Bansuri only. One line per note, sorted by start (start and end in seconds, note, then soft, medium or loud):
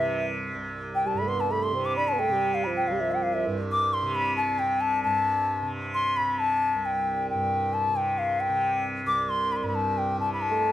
0.00 0.24 E5 medium
0.95 1.08 G5 medium
1.07 1.19 A5 medium
1.18 1.30 B5 medium
1.28 1.42 C6 medium
1.40 1.53 A5 medium
1.51 1.64 B5 medium
1.63 1.87 C6 medium
1.85 1.96 D6 loud
1.96 2.09 B5 medium
2.08 2.20 A5 medium
2.19 2.56 G5 loud
2.54 2.65 F5 medium
2.64 2.66 B5 medium
2.77 2.89 G5 medium
2.87 3.01 F5 medium
2.99 3.13 E5 medium
3.11 3.24 G5 medium
3.22 3.35 F5 medium
3.34 3.45 E5 medium
3.71 3.95 D6 loud
3.93 4.16 C6 medium
4.15 4.36 B5 medium
4.37 4.60 A5 medium
4.59 4.82 G5 medium
4.81 5.03 A5 medium
5.03 5.67 A5 medium
5.94 6.18 C6 medium
6.17 6.40 B5 medium
6.39 6.87 A5 medium
6.85 7.29 G5 medium
7.30 7.75 G5 medium
7.73 7.97 A5 medium
7.96 8.20 G5 medium
8.18 8.42 F5 medium
8.40 8.85 G5 medium
9.07 9.31 D6 loud
9.29 9.53 C6 loud
9.52 9.58 B5 medium
9.56 9.65 C6 medium
9.63 9.67 B5 medium
9.67 9.76 B5 soft
9.75 9.99 A5 medium
9.98 10.19 G5 medium
10.20 10.33 A5 medium
10.33 10.43 B5 medium
10.41 10.72 A5 medium